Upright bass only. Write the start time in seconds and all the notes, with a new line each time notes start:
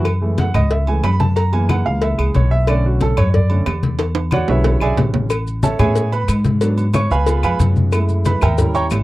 Already playing: F#2
0.55 C#2
1.03 F#2
1.86 C#2
2.19 C#2
2.35 B1
3.18 F#2
3.66 E2
4.48 B1
4.81 B1
4.97 A1
5.79 A2
6.28 G#2
7.10 C#2
7.43 F2
7.59 F#2
8.42 D#2
8.91 G#1